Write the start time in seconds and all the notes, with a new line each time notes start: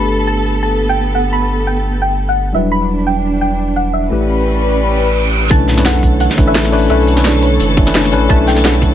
Already playing: G1 A3 B3 D4 G4 A4 B4 B5
0.27 A5
0.63 A5
0.89 G5
1.15 F#5
1.33 B5
1.67 G5
2.02 G5
2.29 F#5
2.53 E1 F#3 G3 D4 E4 B4 E5
2.72 B5
3.07 G5
3.41 G5
3.76 F#5
3.93 E5
4.10 A1 G3 A3 C#4 E4 G4 B4
4.81 reverse cymbal
5.50 B1 D3 E3 A3 C#4 D4 E4 A4 B4 C#5 A5, kick, closed hi-hat, sub drop
5.68 snare, closed hi-hat
5.76 A3 C#4 D4 E4 B4, snare, closed hi-hat
5.85 F#5, snare, closed hi-hat
6.03 kick, closed hi-hat
6.20 F#5, closed hi-hat
6.30 snare
6.37 A1 A3 C#4 D4 E4 B4, kick, closed hi-hat
6.47 A3 C#4 D4 E4 B4 E5
6.54 snare, closed hi-hat
6.65 snare
6.72 A3 C#4 D4 E4 B4 D5, closed hi-hat, open hi-hat
6.90 B1 A3 C#4 D4 E4 B4 E5, closed hi-hat
7.00 closed hi-hat
7.07 closed hi-hat
7.16 A3 C#4 D4 E4 B4, snare
7.25 D5, snare, closed hi-hat
7.43 B4, closed hi-hat
7.60 F#1, closed hi-hat
7.77 A3 C#4 D4 E4 B4, kick, closed hi-hat
7.86 A3 C#4 D4 E4 B4, snare
7.95 F#1, snare, closed hi-hat
8.04 snare
8.12 A1 A3 C#4 D4 E4 B4, closed hi-hat
8.29 B1 A3 C#4 D4 E4 B4 A5, kick, closed hi-hat
8.47 G5, snare, closed hi-hat
8.55 A3 C#4 D4 E4 B4, snare, closed hi-hat
8.64 F#5, snare, closed hi-hat
8.82 kick, closed hi-hat